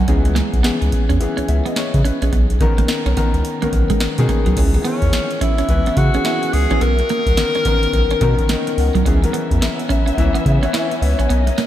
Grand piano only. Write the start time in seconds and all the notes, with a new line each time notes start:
Already playing: D#3 B3 C#4 D#4 A#4 D#5 F#5 G#5 A#5
0.08 E3 B3 C#4 G#4
0.64 E3 B3 C#4 G#4
1.20 E3 B3 C#4 G#4
1.49 E5
1.67 D#5
1.77 C#5
2.06 B4
2.23 G#4
2.61 D#3 B3 C#4 A#4
3.17 D#3 B3 C#4 A#4
3.62 D#3 B3 C#4 A#4
4.18 D#3 B3 C#4 G#4
4.57 E3 B3 C#4 G#4
4.75 D#3 B3 C#4 G#4
4.82 E3
5.69 E3 B3 C#4 B4
6.14 E3 B3 C#4 G#4
6.70 E3 B3 C#4 G#4
7.37 D#3 B3 C#4 A#4
7.66 D#3 B3 C#4 A#4
8.22 D#3 B3 C#4 A#4
8.50 D#3 B3 C#4 A#4 D#5
8.79 F#5
9.06 E3 B3 C#4 G#4
9.24 E3 B3 C#4 A#4
10.17 E3 B3 C#4 E4
10.63 E3 B3 C#4 E4
10.74 C#5
11.02 E5
11.19 G#5